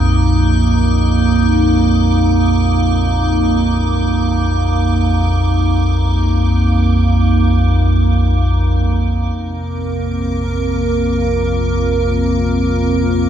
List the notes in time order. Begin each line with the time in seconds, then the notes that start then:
Already playing: A#1 F2 A#3 D#4
9.33 A#1 F2 A#3 C4 A#4
11.00 F4
12.60 A#4